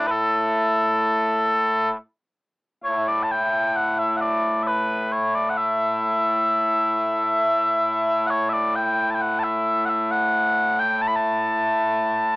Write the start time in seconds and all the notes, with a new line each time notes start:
Already playing: A2 A3 E4
0.07 A4 B4
2.84 A2 A3 E4 C#5
3.07 D5
3.23 A5
3.31 G5
3.76 F#5
3.99 E5
4.17 F#5
4.21 D5
4.63 E5
4.67 B4
5.12 C#5
5.35 D5
5.49 F#5
5.57 E5
8.27 C#5 F#5
8.49 D5 E5
8.76 G5
9.10 A5
9.15 G5
9.21 F#5
9.39 A5
9.43 E5
9.85 E5 F#5
10.11 F#5
10.79 G5
11.02 A5
11.07 B5
11.16 A5